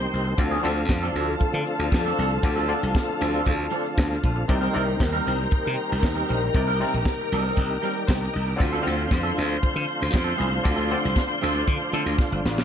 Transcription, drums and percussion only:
0.01 closed hi-hat
0.14 open hi-hat
0.25 closed hi-hat
0.38 kick, closed hi-hat
0.64 closed hi-hat
0.77 closed hi-hat
0.89 kick, snare
1.16 closed hi-hat
1.28 closed hi-hat
1.40 kick, closed hi-hat
1.53 closed hi-hat
1.67 closed hi-hat
1.81 closed hi-hat
1.92 kick, snare
2.07 closed hi-hat
2.19 open hi-hat
2.31 closed hi-hat
2.43 kick, closed hi-hat
2.69 closed hi-hat
2.83 closed hi-hat
2.95 kick, snare
3.08 closed hi-hat
3.22 closed hi-hat
3.33 closed hi-hat
3.46 kick, closed hi-hat
3.58 closed hi-hat
3.72 closed hi-hat
3.86 closed hi-hat
3.98 kick, snare
4.12 snare
4.24 kick, open hi-hat
4.36 closed hi-hat
4.49 kick, closed hi-hat
4.74 closed hi-hat
4.88 closed hi-hat
5.00 kick, snare
5.27 closed hi-hat
5.38 closed hi-hat
5.51 kick, closed hi-hat
5.77 closed hi-hat
5.91 closed hi-hat
6.03 kick, snare
6.17 closed hi-hat
6.29 open hi-hat
6.41 closed hi-hat
6.55 kick, closed hi-hat
6.79 closed hi-hat
6.94 closed hi-hat
7.05 kick, snare
7.18 closed hi-hat
7.32 closed hi-hat
7.44 closed hi-hat
7.56 kick, closed hi-hat
7.70 closed hi-hat
7.83 closed hi-hat
7.97 closed hi-hat
8.08 kick, snare
8.23 snare
8.35 open hi-hat
8.47 closed hi-hat
8.60 kick, closed hi-hat
8.73 closed hi-hat
8.85 closed hi-hat
8.99 closed hi-hat
9.11 kick, snare
9.38 closed hi-hat
9.50 closed hi-hat
9.63 kick, closed hi-hat
9.88 closed hi-hat
10.02 closed hi-hat
10.14 kick, snare
10.41 open hi-hat
10.53 closed hi-hat
10.65 kick, closed hi-hat
10.90 closed hi-hat
11.04 closed hi-hat
11.16 kick, snare
11.43 closed hi-hat
11.55 closed hi-hat
11.67 kick, closed hi-hat
11.80 closed hi-hat
11.93 closed hi-hat
12.07 closed hi-hat
12.19 kick, snare
12.46 snare
12.58 snare

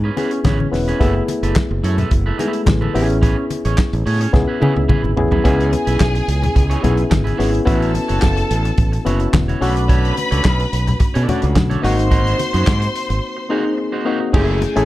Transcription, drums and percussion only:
0.17 closed hi-hat, muted conga
0.31 closed hi-hat
0.44 kick, snare, clap, high conga
0.60 high conga
0.74 snare, open hi-hat
0.89 closed hi-hat
1.01 kick, closed hi-hat
1.28 closed hi-hat, muted conga
1.43 closed hi-hat
1.56 kick, snare, clap, high conga
1.84 closed hi-hat
1.98 closed hi-hat, low conga
2.11 kick, closed hi-hat
2.39 closed hi-hat, muted conga
2.53 closed hi-hat
2.66 kick, snare, clap, high conga
2.82 high conga
2.95 open hi-hat
3.10 closed hi-hat
3.23 kick, closed hi-hat
3.50 closed hi-hat, muted conga
3.65 closed hi-hat
3.78 kick, snare, clap, high conga
3.93 closed hi-hat
4.07 open hi-hat
4.21 closed hi-hat
4.34 kick, snare, low conga
4.62 high tom, muted conga
4.77 high tom
4.89 kick, mid tom, high conga
5.05 high conga
5.17 floor tom
5.32 floor tom
5.45 kick, closed hi-hat, muted conga
5.60 closed hi-hat
5.73 closed hi-hat, muted conga
5.87 closed hi-hat
6.00 kick, snare, clap, high conga
6.15 closed hi-hat
6.29 closed hi-hat
6.43 closed hi-hat, low conga
6.56 kick, closed hi-hat
6.71 closed hi-hat
6.84 closed hi-hat, muted conga, low conga
6.97 closed hi-hat
7.11 kick, snare, clap, high conga
7.27 closed hi-hat, high conga
7.40 snare, open hi-hat
7.55 closed hi-hat
7.67 kick, closed hi-hat, muted conga
7.82 closed hi-hat
7.95 closed hi-hat, muted conga
8.09 closed hi-hat
8.22 kick, snare, clap, high conga
8.37 closed hi-hat
8.51 closed hi-hat
8.65 closed hi-hat
8.78 kick, closed hi-hat
8.93 closed hi-hat
9.06 closed hi-hat, muted conga
9.20 closed hi-hat
9.34 kick, snare, clap, high conga
9.49 closed hi-hat, high conga
9.62 snare, open hi-hat
9.77 closed hi-hat
9.89 kick, closed hi-hat
10.05 closed hi-hat
10.17 closed hi-hat, muted conga
10.32 closed hi-hat
10.45 kick, snare, clap, high conga
10.60 closed hi-hat
10.73 closed hi-hat
10.87 closed hi-hat, low conga
11.00 kick, closed hi-hat
11.15 closed hi-hat
11.29 closed hi-hat, muted conga, low conga
11.42 closed hi-hat
11.56 kick, snare, clap, high conga
11.71 closed hi-hat, high conga
11.84 snare, open hi-hat
11.99 closed hi-hat
12.12 kick, closed hi-hat, muted conga
12.27 closed hi-hat
12.39 closed hi-hat, muted conga
12.54 closed hi-hat
12.67 kick, snare, clap, high conga
12.82 closed hi-hat
12.96 closed hi-hat
13.10 closed hi-hat
14.34 kick, crash, muted conga
14.62 closed hi-hat, muted conga
14.76 closed hi-hat

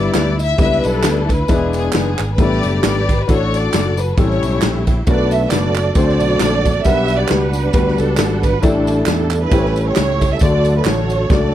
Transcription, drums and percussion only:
0.14 snare, clap, ride, tambourine
0.39 ride, tambourine
0.58 kick, ride, tambourine
0.72 snare
0.84 ride, tambourine
1.03 snare, clap, ride, tambourine
1.29 kick, ride, tambourine
1.48 kick, ride, tambourine
1.73 ride, tambourine
1.92 snare, clap, ride, tambourine
2.18 snare, clap, ride, tambourine
2.38 kick, ride, tambourine
2.52 snare
2.63 ride, tambourine
2.83 snare, clap, ride, tambourine
3.09 kick, ride, tambourine
3.29 kick, ride, tambourine
3.54 ride, tambourine
3.74 snare, clap, ride, tambourine
3.97 ride, tambourine
4.17 kick, ride, tambourine
4.30 snare
4.43 ride, tambourine
4.62 snare, clap, ride, tambourine
4.87 kick, ride, tambourine
5.07 kick, ride, tambourine
5.31 ride, tambourine
5.51 snare, clap, ride, tambourine
5.75 clap, ride, tambourine
5.95 kick, ride, tambourine
6.09 snare
6.20 ride, tambourine
6.40 snare, clap, ride, tambourine
6.65 kick, ride, tambourine
6.84 kick, ride, tambourine
7.08 ride, tambourine
7.28 snare, clap, ride, tambourine
7.53 ride, tambourine
7.73 kick, ride, tambourine
7.88 snare
7.98 ride, tambourine
8.17 snare, clap, ride, tambourine
8.43 kick, ride, tambourine
8.63 kick, ride, tambourine
8.87 ride, tambourine
9.06 snare, clap, ride, tambourine
9.31 clap, ride, tambourine
9.51 kick, ride, tambourine
9.65 snare
9.76 ride, tambourine
9.96 snare, clap, ride, tambourine
10.21 kick, ride, tambourine
10.39 kick, ride, tambourine
10.65 ride, tambourine
10.85 snare, clap, ride, tambourine
11.10 ride, tambourine
11.30 kick, snare, tambourine

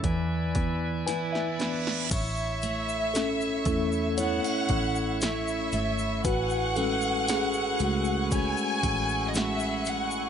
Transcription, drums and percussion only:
0.04 kick, closed hi-hat
0.55 kick, closed hi-hat
1.08 snare, closed hi-hat
1.35 snare
1.60 snare, closed hi-hat
1.87 snare
2.10 kick, closed hi-hat, crash, shaker
2.37 shaker
2.62 closed hi-hat, shaker
2.89 shaker
3.15 snare, closed hi-hat, shaker
3.41 shaker
3.65 kick, closed hi-hat, shaker
3.92 shaker
4.18 closed hi-hat, shaker
4.45 shaker
4.69 kick, closed hi-hat
4.95 shaker
5.21 snare, closed hi-hat, shaker
5.48 shaker
5.72 closed hi-hat, shaker
5.99 shaker
6.24 kick, closed hi-hat, shaker
6.50 shaker
6.76 closed hi-hat, shaker
7.01 shaker
7.28 snare, closed hi-hat, shaker
7.53 shaker
7.79 closed hi-hat, shaker
8.04 shaker
8.31 kick, closed hi-hat, shaker
8.57 shaker
8.83 kick, closed hi-hat
9.09 shaker
9.34 snare, closed hi-hat, shaker
9.60 shaker
9.85 closed hi-hat, shaker
10.11 shaker

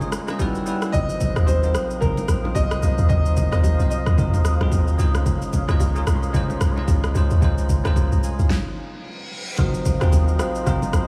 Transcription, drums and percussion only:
0.01 low bongo, shaker
0.12 cross-stick, shaker
0.28 cross-stick, low bongo, shaker
0.39 kick, high bongo, shaker
0.55 shaker
0.66 high bongo, shaker
0.82 cross-stick, shaker
0.93 kick, low conga, shaker
1.09 shaker
1.20 kick, low bongo, low conga, shaker
1.36 cross-stick, high bongo, shaker
1.47 kick, high bongo, shaker
1.63 shaker
1.75 cross-stick, shaker
1.90 shaker
2.02 kick, low conga, shaker
2.17 low bongo, shaker
2.28 cross-stick, shaker
2.45 low bongo
2.55 kick, high bongo, shaker
2.71 cross-stick, shaker
2.83 high bongo, shaker
2.98 shaker
3.10 kick, low conga, shaker
3.26 shaker
3.37 kick, low bongo, low conga, shaker
3.52 cross-stick, high bongo, shaker
3.64 kick, high bongo, shaker
3.80 shaker
3.91 shaker
4.06 cross-stick, shaker
4.18 kick, low conga, shaker
4.34 low bongo, shaker
4.45 cross-stick, shaker
4.61 cross-stick, low bongo
4.72 kick, high bongo, shaker
4.88 shaker
4.99 high bongo, shaker
5.14 cross-stick, shaker
5.26 kick, low conga, shaker
5.42 shaker
5.53 kick, low bongo, low conga, shaker
5.69 cross-stick, high bongo, shaker
5.80 kick, high bongo, shaker
5.96 shaker
6.07 cross-stick, shaker
6.23 shaker
6.34 kick, low conga, shaker
6.50 low bongo, shaker
6.61 cross-stick, shaker
6.77 low bongo
6.88 kick, high bongo, shaker
7.04 cross-stick, shaker
7.15 high bongo, shaker
7.31 shaker
7.42 kick, low conga, shaker
7.58 shaker
7.69 kick, low bongo, low conga, shaker
7.85 cross-stick, high bongo, low bongo, shaker
7.96 kick, high bongo, shaker
8.12 shaker
8.23 shaker
8.39 shaker
8.50 kick, snare
9.58 kick, low conga, shaker
9.74 shaker
9.85 kick, low conga, shaker
10.01 cross-stick, shaker
10.12 kick, high bongo, shaker
10.28 shaker
10.39 cross-stick, shaker
10.55 shaker
10.66 kick, low conga, shaker
10.82 low bongo, shaker
10.93 cross-stick, shaker

